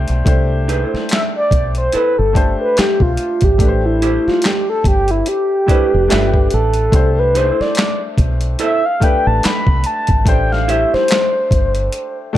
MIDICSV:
0, 0, Header, 1, 8, 480
1, 0, Start_track
1, 0, Key_signature, 0, "major"
1, 0, Tempo, 833333
1, 150, Time_signature, 4, 2, 24, 8
1, 7129, End_track
2, 0, Start_track
2, 0, Title_t, "Soft synth lead"
2, 0, Program_c, 0, 80
2, 643, Note_on_c, 0, 76, 97
2, 702, Note_off_c, 0, 76, 0
2, 784, Note_on_c, 0, 74, 99
2, 1000, Note_off_c, 0, 74, 0
2, 1023, Note_on_c, 0, 72, 90
2, 1112, Note_off_c, 0, 72, 0
2, 1126, Note_on_c, 0, 71, 103
2, 1246, Note_off_c, 0, 71, 0
2, 1258, Note_on_c, 0, 69, 86
2, 1476, Note_off_c, 0, 69, 0
2, 1500, Note_on_c, 0, 71, 88
2, 1605, Note_on_c, 0, 67, 90
2, 1614, Note_off_c, 0, 71, 0
2, 1740, Note_on_c, 0, 65, 87
2, 1749, Note_off_c, 0, 67, 0
2, 1982, Note_on_c, 0, 67, 82
2, 1991, Note_off_c, 0, 65, 0
2, 2220, Note_on_c, 0, 64, 79
2, 2229, Note_off_c, 0, 67, 0
2, 2464, Note_on_c, 0, 65, 80
2, 2472, Note_off_c, 0, 64, 0
2, 2567, Note_on_c, 0, 67, 87
2, 2575, Note_off_c, 0, 65, 0
2, 2695, Note_off_c, 0, 67, 0
2, 2705, Note_on_c, 0, 69, 88
2, 2793, Note_off_c, 0, 69, 0
2, 2807, Note_on_c, 0, 67, 91
2, 2942, Note_on_c, 0, 64, 82
2, 2950, Note_off_c, 0, 67, 0
2, 3038, Note_off_c, 0, 64, 0
2, 3043, Note_on_c, 0, 67, 100
2, 3766, Note_on_c, 0, 69, 97
2, 3775, Note_off_c, 0, 67, 0
2, 4143, Note_on_c, 0, 71, 85
2, 4151, Note_off_c, 0, 69, 0
2, 4245, Note_on_c, 0, 72, 81
2, 4253, Note_off_c, 0, 71, 0
2, 4384, Note_on_c, 0, 74, 76
2, 4393, Note_off_c, 0, 72, 0
2, 4616, Note_off_c, 0, 74, 0
2, 4965, Note_on_c, 0, 76, 105
2, 5101, Note_on_c, 0, 77, 95
2, 5110, Note_off_c, 0, 76, 0
2, 5204, Note_on_c, 0, 79, 100
2, 5213, Note_off_c, 0, 77, 0
2, 5338, Note_on_c, 0, 81, 94
2, 5347, Note_off_c, 0, 79, 0
2, 5443, Note_on_c, 0, 83, 109
2, 5452, Note_off_c, 0, 81, 0
2, 5681, Note_on_c, 0, 81, 102
2, 5690, Note_off_c, 0, 83, 0
2, 5916, Note_off_c, 0, 81, 0
2, 5923, Note_on_c, 0, 79, 89
2, 6060, Note_on_c, 0, 77, 90
2, 6069, Note_off_c, 0, 79, 0
2, 6166, Note_on_c, 0, 76, 89
2, 6175, Note_off_c, 0, 77, 0
2, 6301, Note_on_c, 0, 72, 82
2, 6310, Note_off_c, 0, 76, 0
2, 7014, Note_off_c, 0, 72, 0
2, 7129, End_track
3, 0, Start_track
3, 0, Title_t, "Hollow-body jazz guitar"
3, 0, Program_c, 1, 26
3, 392, Note_on_c, 1, 63, 68
3, 396, Note_on_c, 1, 68, 72
3, 402, Note_on_c, 1, 71, 75
3, 484, Note_off_c, 1, 63, 0
3, 484, Note_on_c, 1, 64, 68
3, 488, Note_off_c, 1, 68, 0
3, 488, Note_on_c, 1, 69, 72
3, 494, Note_off_c, 1, 71, 0
3, 494, Note_on_c, 1, 72, 75
3, 615, Note_off_c, 1, 64, 0
3, 617, Note_off_c, 1, 69, 0
3, 620, Note_off_c, 1, 72, 0
3, 1113, Note_on_c, 1, 64, 72
3, 1118, Note_on_c, 1, 69, 79
3, 1122, Note_on_c, 1, 72, 80
3, 1237, Note_off_c, 1, 64, 0
3, 1240, Note_off_c, 1, 69, 0
3, 1242, Note_off_c, 1, 72, 0
3, 2316, Note_on_c, 1, 64, 69
3, 2319, Note_on_c, 1, 67, 76
3, 2323, Note_on_c, 1, 72, 80
3, 2537, Note_off_c, 1, 64, 0
3, 2538, Note_off_c, 1, 67, 0
3, 2540, Note_off_c, 1, 72, 0
3, 3270, Note_on_c, 1, 64, 72
3, 3275, Note_on_c, 1, 67, 79
3, 3278, Note_on_c, 1, 72, 86
3, 3396, Note_off_c, 1, 64, 0
3, 3398, Note_off_c, 1, 67, 0
3, 3400, Note_off_c, 1, 72, 0
3, 3513, Note_on_c, 1, 65, 82
3, 3516, Note_on_c, 1, 71, 83
3, 3521, Note_on_c, 1, 76, 91
3, 3638, Note_off_c, 1, 65, 0
3, 3639, Note_off_c, 1, 71, 0
3, 3642, Note_off_c, 1, 76, 0
3, 4232, Note_on_c, 1, 63, 81
3, 4239, Note_on_c, 1, 68, 83
3, 4242, Note_on_c, 1, 71, 96
3, 4325, Note_off_c, 1, 63, 0
3, 4325, Note_on_c, 1, 64, 81
3, 4331, Note_off_c, 1, 68, 0
3, 4331, Note_on_c, 1, 69, 83
3, 4334, Note_off_c, 1, 71, 0
3, 4334, Note_on_c, 1, 72, 96
3, 4455, Note_off_c, 1, 64, 0
3, 4458, Note_off_c, 1, 69, 0
3, 4460, Note_off_c, 1, 72, 0
3, 4951, Note_on_c, 1, 64, 83
3, 4956, Note_on_c, 1, 69, 89
3, 4961, Note_on_c, 1, 72, 94
3, 5076, Note_off_c, 1, 64, 0
3, 5079, Note_off_c, 1, 69, 0
3, 5081, Note_off_c, 1, 72, 0
3, 6152, Note_on_c, 1, 64, 82
3, 6157, Note_on_c, 1, 67, 80
3, 6160, Note_on_c, 1, 72, 86
3, 6375, Note_off_c, 1, 64, 0
3, 6377, Note_off_c, 1, 67, 0
3, 6379, Note_off_c, 1, 72, 0
3, 7129, End_track
4, 0, Start_track
4, 0, Title_t, "Upright piano"
4, 0, Program_c, 2, 0
4, 0, Control_c, 2, 64, 127
4, 0, Note_on_c, 2, 57, 89
4, 0, Note_on_c, 2, 62, 83
4, 0, Note_on_c, 2, 67, 84
4, 0, Note_on_c, 2, 72, 94
4, 66, Note_off_c, 2, 57, 0
4, 69, Note_off_c, 2, 62, 0
4, 73, Note_off_c, 2, 67, 0
4, 76, Note_off_c, 2, 72, 0
4, 142, Note_on_c, 2, 57, 79
4, 148, Note_on_c, 2, 62, 67
4, 155, Note_on_c, 2, 67, 69
4, 159, Control_c, 2, 64, 0
4, 162, Note_on_c, 2, 72, 77
4, 241, Control_c, 2, 64, 127
4, 923, Note_off_c, 2, 57, 0
4, 926, Note_off_c, 2, 62, 0
4, 929, Note_off_c, 2, 67, 0
4, 933, Note_off_c, 2, 72, 0
4, 1343, Note_on_c, 2, 57, 71
4, 1350, Note_on_c, 2, 62, 61
4, 1356, Note_on_c, 2, 67, 61
4, 1362, Note_on_c, 2, 72, 73
4, 1937, Note_off_c, 2, 57, 0
4, 1941, Note_off_c, 2, 62, 0
4, 1944, Note_off_c, 2, 67, 0
4, 1947, Note_off_c, 2, 72, 0
4, 2062, Note_on_c, 2, 57, 64
4, 2070, Note_on_c, 2, 62, 59
4, 2077, Note_on_c, 2, 67, 63
4, 2078, Control_c, 2, 64, 0
4, 2084, Note_on_c, 2, 71, 57
4, 2120, Note_off_c, 2, 71, 0
4, 2121, Note_on_c, 2, 72, 74
4, 2172, Control_c, 2, 64, 127
4, 2843, Note_off_c, 2, 57, 0
4, 2847, Note_off_c, 2, 62, 0
4, 2850, Note_off_c, 2, 67, 0
4, 2872, Note_off_c, 2, 72, 0
4, 3263, Note_on_c, 2, 57, 66
4, 3271, Note_on_c, 2, 62, 70
4, 3277, Note_on_c, 2, 67, 65
4, 3284, Note_on_c, 2, 71, 81
4, 3494, Note_off_c, 2, 57, 0
4, 3502, Note_off_c, 2, 62, 0
4, 3502, Note_on_c, 2, 57, 71
4, 3508, Note_off_c, 2, 67, 0
4, 3510, Note_on_c, 2, 62, 70
4, 3516, Note_off_c, 2, 71, 0
4, 3516, Note_on_c, 2, 67, 65
4, 3517, Control_c, 2, 64, 0
4, 3525, Note_on_c, 2, 71, 83
4, 3625, Control_c, 2, 64, 127
4, 3905, Note_off_c, 2, 57, 0
4, 3909, Note_off_c, 2, 62, 0
4, 3912, Note_off_c, 2, 67, 0
4, 3916, Note_off_c, 2, 71, 0
4, 3983, Note_on_c, 2, 57, 72
4, 3991, Note_on_c, 2, 62, 62
4, 3998, Note_on_c, 2, 67, 58
4, 3999, Control_c, 2, 64, 0
4, 4006, Note_on_c, 2, 72, 77
4, 4113, Control_c, 2, 64, 127
4, 4763, Note_off_c, 2, 57, 0
4, 4767, Note_off_c, 2, 62, 0
4, 4771, Note_off_c, 2, 67, 0
4, 4775, Note_off_c, 2, 72, 0
4, 5185, Note_on_c, 2, 57, 76
4, 5193, Note_on_c, 2, 62, 68
4, 5198, Note_on_c, 2, 67, 69
4, 5206, Note_on_c, 2, 71, 80
4, 5778, Note_off_c, 2, 57, 0
4, 5782, Note_off_c, 2, 62, 0
4, 5785, Note_off_c, 2, 67, 0
4, 5789, Note_off_c, 2, 71, 0
4, 5903, Note_on_c, 2, 57, 66
4, 5912, Note_on_c, 2, 62, 61
4, 5917, Note_on_c, 2, 67, 63
4, 5919, Control_c, 2, 64, 0
4, 5924, Note_on_c, 2, 72, 81
4, 6018, Control_c, 2, 64, 127
4, 6683, Note_off_c, 2, 57, 0
4, 6688, Note_off_c, 2, 62, 0
4, 6690, Note_off_c, 2, 67, 0
4, 6694, Note_off_c, 2, 72, 0
4, 7102, Note_on_c, 2, 57, 88
4, 7108, Note_on_c, 2, 62, 82
4, 7129, Note_off_c, 2, 57, 0
4, 7129, Note_off_c, 2, 62, 0
4, 7129, End_track
5, 0, Start_track
5, 0, Title_t, "Fingered electric bass"
5, 0, Program_c, 3, 33
5, 55, Note_on_c, 3, 35, 80
5, 142, Note_off_c, 3, 35, 0
5, 154, Note_on_c, 3, 36, 105
5, 482, Note_off_c, 3, 36, 0
5, 877, Note_on_c, 3, 35, 91
5, 1084, Note_off_c, 3, 35, 0
5, 1261, Note_on_c, 3, 31, 80
5, 1465, Note_off_c, 3, 31, 0
5, 1735, Note_on_c, 3, 35, 75
5, 1822, Note_off_c, 3, 35, 0
5, 1976, Note_on_c, 3, 32, 82
5, 2062, Note_off_c, 3, 32, 0
5, 2075, Note_on_c, 3, 33, 110
5, 2402, Note_off_c, 3, 33, 0
5, 2794, Note_on_c, 3, 31, 83
5, 3003, Note_off_c, 3, 31, 0
5, 3423, Note_on_c, 3, 29, 85
5, 3506, Note_off_c, 3, 29, 0
5, 3527, Note_on_c, 3, 31, 97
5, 3730, Note_off_c, 3, 31, 0
5, 3765, Note_on_c, 3, 33, 89
5, 3968, Note_off_c, 3, 33, 0
5, 3993, Note_on_c, 3, 36, 102
5, 4321, Note_off_c, 3, 36, 0
5, 4716, Note_on_c, 3, 35, 83
5, 4923, Note_off_c, 3, 35, 0
5, 5338, Note_on_c, 3, 33, 84
5, 5424, Note_off_c, 3, 33, 0
5, 5575, Note_on_c, 3, 36, 90
5, 5662, Note_off_c, 3, 36, 0
5, 5817, Note_on_c, 3, 32, 82
5, 5903, Note_off_c, 3, 32, 0
5, 5914, Note_on_c, 3, 33, 102
5, 6242, Note_off_c, 3, 33, 0
5, 6636, Note_on_c, 3, 31, 94
5, 6843, Note_off_c, 3, 31, 0
5, 7129, End_track
6, 0, Start_track
6, 0, Title_t, "Muted fingered electric bass strokes"
6, 540, Note_on_c, 9, 29, 42
6, 598, Note_off_c, 9, 29, 0
6, 1121, Note_on_c, 9, 29, 39
6, 1178, Note_off_c, 9, 29, 0
6, 1603, Note_on_c, 9, 29, 42
6, 1661, Note_off_c, 9, 29, 0
6, 2462, Note_on_c, 9, 29, 43
6, 2519, Note_off_c, 9, 29, 0
6, 3280, Note_on_c, 9, 29, 44
6, 3338, Note_off_c, 9, 29, 0
6, 4380, Note_on_c, 9, 29, 45
6, 4437, Note_off_c, 9, 29, 0
6, 5198, Note_on_c, 9, 29, 44
6, 5255, Note_off_c, 9, 29, 0
6, 6300, Note_on_c, 9, 29, 47
6, 6358, Note_off_c, 9, 29, 0
6, 7129, End_track
7, 0, Start_track
7, 0, Title_t, "Muted hollow-body jazz guitar strokes"
7, 3033, Note_on_c, 9, 29, 40
7, 3091, Note_off_c, 9, 29, 0
7, 7129, End_track
8, 0, Start_track
8, 0, Title_t, "Drums"
8, 44, Note_on_c, 9, 42, 47
8, 101, Note_off_c, 9, 42, 0
8, 149, Note_on_c, 9, 36, 111
8, 154, Note_on_c, 9, 42, 85
8, 206, Note_off_c, 9, 36, 0
8, 211, Note_off_c, 9, 42, 0
8, 398, Note_on_c, 9, 42, 59
8, 456, Note_off_c, 9, 42, 0
8, 546, Note_on_c, 9, 38, 34
8, 603, Note_off_c, 9, 38, 0
8, 628, Note_on_c, 9, 42, 72
8, 645, Note_on_c, 9, 39, 85
8, 650, Note_on_c, 9, 38, 107
8, 686, Note_off_c, 9, 42, 0
8, 703, Note_off_c, 9, 39, 0
8, 707, Note_off_c, 9, 38, 0
8, 870, Note_on_c, 9, 36, 82
8, 877, Note_on_c, 9, 42, 56
8, 928, Note_off_c, 9, 36, 0
8, 935, Note_off_c, 9, 42, 0
8, 1007, Note_on_c, 9, 42, 43
8, 1064, Note_off_c, 9, 42, 0
8, 1108, Note_on_c, 9, 42, 65
8, 1166, Note_off_c, 9, 42, 0
8, 1354, Note_on_c, 9, 36, 80
8, 1360, Note_on_c, 9, 42, 53
8, 1412, Note_off_c, 9, 36, 0
8, 1418, Note_off_c, 9, 42, 0
8, 1595, Note_on_c, 9, 42, 64
8, 1602, Note_on_c, 9, 39, 77
8, 1607, Note_on_c, 9, 38, 104
8, 1652, Note_off_c, 9, 42, 0
8, 1660, Note_off_c, 9, 39, 0
8, 1665, Note_off_c, 9, 38, 0
8, 1729, Note_on_c, 9, 36, 86
8, 1787, Note_off_c, 9, 36, 0
8, 1828, Note_on_c, 9, 42, 58
8, 1886, Note_off_c, 9, 42, 0
8, 1962, Note_on_c, 9, 42, 48
8, 1970, Note_on_c, 9, 36, 86
8, 2020, Note_off_c, 9, 42, 0
8, 2027, Note_off_c, 9, 36, 0
8, 2068, Note_on_c, 9, 36, 114
8, 2073, Note_on_c, 9, 42, 93
8, 2126, Note_off_c, 9, 36, 0
8, 2131, Note_off_c, 9, 42, 0
8, 2316, Note_on_c, 9, 42, 62
8, 2374, Note_off_c, 9, 42, 0
8, 2464, Note_on_c, 9, 38, 34
8, 2522, Note_off_c, 9, 38, 0
8, 2545, Note_on_c, 9, 42, 71
8, 2562, Note_on_c, 9, 39, 86
8, 2566, Note_on_c, 9, 38, 104
8, 2602, Note_off_c, 9, 42, 0
8, 2619, Note_off_c, 9, 39, 0
8, 2624, Note_off_c, 9, 38, 0
8, 2790, Note_on_c, 9, 36, 94
8, 2795, Note_on_c, 9, 42, 53
8, 2848, Note_off_c, 9, 36, 0
8, 2853, Note_off_c, 9, 42, 0
8, 2925, Note_on_c, 9, 42, 45
8, 2983, Note_off_c, 9, 42, 0
8, 3029, Note_on_c, 9, 42, 73
8, 3087, Note_off_c, 9, 42, 0
8, 3274, Note_on_c, 9, 36, 90
8, 3280, Note_on_c, 9, 42, 61
8, 3332, Note_off_c, 9, 36, 0
8, 3337, Note_off_c, 9, 42, 0
8, 3515, Note_on_c, 9, 42, 65
8, 3522, Note_on_c, 9, 39, 84
8, 3527, Note_on_c, 9, 38, 104
8, 3572, Note_off_c, 9, 42, 0
8, 3580, Note_off_c, 9, 39, 0
8, 3585, Note_off_c, 9, 38, 0
8, 3650, Note_on_c, 9, 36, 80
8, 3707, Note_off_c, 9, 36, 0
8, 3747, Note_on_c, 9, 42, 59
8, 3804, Note_off_c, 9, 42, 0
8, 3880, Note_on_c, 9, 42, 49
8, 3937, Note_off_c, 9, 42, 0
8, 3988, Note_on_c, 9, 36, 117
8, 3992, Note_on_c, 9, 42, 92
8, 4045, Note_off_c, 9, 36, 0
8, 4050, Note_off_c, 9, 42, 0
8, 4235, Note_on_c, 9, 42, 68
8, 4293, Note_off_c, 9, 42, 0
8, 4383, Note_on_c, 9, 38, 35
8, 4441, Note_off_c, 9, 38, 0
8, 4463, Note_on_c, 9, 42, 74
8, 4480, Note_on_c, 9, 39, 91
8, 4485, Note_on_c, 9, 38, 118
8, 4521, Note_off_c, 9, 42, 0
8, 4538, Note_off_c, 9, 39, 0
8, 4542, Note_off_c, 9, 38, 0
8, 4709, Note_on_c, 9, 36, 94
8, 4713, Note_on_c, 9, 42, 53
8, 4767, Note_off_c, 9, 36, 0
8, 4771, Note_off_c, 9, 42, 0
8, 4842, Note_on_c, 9, 42, 48
8, 4900, Note_off_c, 9, 42, 0
8, 4947, Note_on_c, 9, 42, 72
8, 5005, Note_off_c, 9, 42, 0
8, 5193, Note_on_c, 9, 36, 92
8, 5197, Note_on_c, 9, 42, 61
8, 5251, Note_off_c, 9, 36, 0
8, 5255, Note_off_c, 9, 42, 0
8, 5433, Note_on_c, 9, 42, 61
8, 5441, Note_on_c, 9, 39, 86
8, 5446, Note_on_c, 9, 38, 105
8, 5491, Note_off_c, 9, 42, 0
8, 5499, Note_off_c, 9, 39, 0
8, 5503, Note_off_c, 9, 38, 0
8, 5568, Note_on_c, 9, 36, 86
8, 5626, Note_off_c, 9, 36, 0
8, 5666, Note_on_c, 9, 42, 65
8, 5724, Note_off_c, 9, 42, 0
8, 5801, Note_on_c, 9, 42, 48
8, 5809, Note_on_c, 9, 36, 92
8, 5859, Note_off_c, 9, 42, 0
8, 5867, Note_off_c, 9, 36, 0
8, 5908, Note_on_c, 9, 36, 114
8, 5913, Note_on_c, 9, 42, 93
8, 5965, Note_off_c, 9, 36, 0
8, 5971, Note_off_c, 9, 42, 0
8, 6063, Note_on_c, 9, 38, 36
8, 6120, Note_off_c, 9, 38, 0
8, 6156, Note_on_c, 9, 42, 61
8, 6214, Note_off_c, 9, 42, 0
8, 6303, Note_on_c, 9, 38, 34
8, 6361, Note_off_c, 9, 38, 0
8, 6383, Note_on_c, 9, 42, 78
8, 6401, Note_on_c, 9, 39, 93
8, 6405, Note_on_c, 9, 38, 116
8, 6441, Note_off_c, 9, 42, 0
8, 6458, Note_off_c, 9, 39, 0
8, 6463, Note_off_c, 9, 38, 0
8, 6629, Note_on_c, 9, 36, 95
8, 6635, Note_on_c, 9, 42, 56
8, 6687, Note_off_c, 9, 36, 0
8, 6693, Note_off_c, 9, 42, 0
8, 6765, Note_on_c, 9, 42, 45
8, 6823, Note_off_c, 9, 42, 0
8, 6869, Note_on_c, 9, 42, 72
8, 6926, Note_off_c, 9, 42, 0
8, 7129, End_track
0, 0, End_of_file